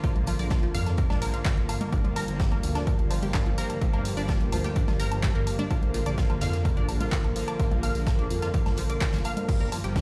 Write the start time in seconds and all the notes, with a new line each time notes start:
Already playing: G2 D3 F4 A#4 F5
0.04 A#1 D3 F3 A#3 F4, kick, closed hi-hat
0.16 closed hi-hat, low conga
0.27 F3 F4, closed hi-hat, open hi-hat, low woodblock
0.39 A#1 D3 F3 A#3 D5 D6, open hi-hat
0.50 F4 F5, kick, snare, closed hi-hat, low woodblock
0.63 F3 F4, closed hi-hat
0.74 F2 F5 F6, closed hi-hat, open hi-hat
0.86 snare, closed hi-hat, low woodblock
0.97 A#3 A#4, kick, closed hi-hat
1.10 A#1 D4 D5, snare, closed hi-hat, low conga, low woodblock
1.22 D3 F3 A#3 A#4 A#5, closed hi-hat, open hi-hat
1.34 F4 F5, closed hi-hat
1.45 F4 F5, kick, snare, clap, closed hi-hat, low woodblock
1.57 A#1, closed hi-hat
1.69 F4 F5, closed hi-hat, open hi-hat, low woodblock
1.81 A#3 A#4, closed hi-hat, low conga
1.92 G1 F3 G3 A#3 D4 D5, kick, closed hi-hat, low woodblock
2.04 F3 F4, closed hi-hat, low conga
2.16 A#4 A#5, closed hi-hat, open hi-hat, low woodblock
2.28 G1 F3 G3 A#3, closed hi-hat
2.35 G4
2.40 G3 G4, kick, snare, closed hi-hat
2.52 A#3 A#4, closed hi-hat, low woodblock
2.63 D2, closed hi-hat, open hi-hat
2.75 D4 D5, snare, closed hi-hat, low woodblock
2.87 F3 F4, kick, closed hi-hat
2.99 G1, closed hi-hat
3.11 F3 F4, open hi-hat, low woodblock
3.23 G4 G5, closed hi-hat, low conga
3.34 D4 D5, kick, snare, clap, closed hi-hat, low woodblock
3.46 G1 F3 F4, closed hi-hat
3.58 F3 G3 A#3 A#4 A#5, closed hi-hat, open hi-hat
3.70 closed hi-hat, low woodblock
3.81 G1 F3 G3 A#3 G4, kick, closed hi-hat
3.93 A#3 A#4, closed hi-hat, low conga, low woodblock
4.05 closed hi-hat, open hi-hat
4.17 G1 F3 G3 A#3 D4 D5, open hi-hat
4.28 F3 F4, kick, snare, closed hi-hat, low woodblock
4.41 closed hi-hat
4.52 D2 F3 F4, closed hi-hat, open hi-hat, low woodblock
4.64 G4 G5, snare, closed hi-hat
4.76 D4 D5, kick, closed hi-hat
4.88 G1 F3 F4, snare, closed hi-hat, low conga, low woodblock
5.00 A#4 A#5, closed hi-hat, open hi-hat
5.12 closed hi-hat, low woodblock
5.23 G3 G4, kick, snare, clap, closed hi-hat
5.35 G1 A#3 A#4, closed hi-hat
5.47 closed hi-hat, open hi-hat, low woodblock
5.59 D4 D5, closed hi-hat, low conga
5.71 A#1 D3 F3 A#3 F4, kick, closed hi-hat, low woodblock
5.83 closed hi-hat, low conga
5.94 F3 F4, closed hi-hat, open hi-hat
6.06 A#1 D3 F3 A#3 D5 D6, closed hi-hat, low woodblock
6.18 F4 F5, kick, snare, closed hi-hat
6.30 F3 F4, closed hi-hat, low woodblock
6.41 F2 F5 F6, snare, closed hi-hat, open hi-hat
6.53 snare, closed hi-hat
6.65 A#3 A#4, kick, closed hi-hat, low woodblock
6.77 A#1 D4 D5, closed hi-hat
6.89 open hi-hat, low woodblock
7.01 F4 F5, closed hi-hat, low conga
7.12 F3 F4, kick, snare, clap, closed hi-hat
7.24 A#1, closed hi-hat, low woodblock
7.36 D3 F3 A#3 F4, closed hi-hat, open hi-hat
7.48 D5 D6, closed hi-hat, low woodblock
7.59 A#1 D3 F3 A#3 F4 F5, kick, closed hi-hat
7.71 F3 F4, closed hi-hat, low conga
7.83 F5 F6, closed hi-hat, open hi-hat, low woodblock
7.95 A#1 D3 F3 A#3, open hi-hat
8.07 A#3 A#4, kick, snare, closed hi-hat, low woodblock
8.19 D4 D5, closed hi-hat
8.30 F2, closed hi-hat, open hi-hat
8.42 F4 F5, snare, closed hi-hat, low woodblock
8.54 F3 F4, kick, closed hi-hat
8.66 A#1, snare, closed hi-hat, low conga, low woodblock
8.77 F3 F4, closed hi-hat, open hi-hat
8.90 D5 D6, closed hi-hat
9.01 F4 F5, kick, snare, clap, closed hi-hat, low woodblock
9.13 F1 F3 F4, snare, closed hi-hat
9.24 F5 F6, closed hi-hat, open hi-hat, low woodblock
9.37 closed hi-hat, low conga
9.48 G1 G2 D3 F3 G3 A#3 D4 F4, kick, closed hi-hat, crash, low woodblock
9.60 A#4 A#5, closed hi-hat, low conga
9.72 F3 F4, closed hi-hat, open hi-hat, low woodblock
9.76 G4
9.84 G1 F3 G3 A#3 G4 G5, closed hi-hat
9.96 D4 D5, kick, snare, closed hi-hat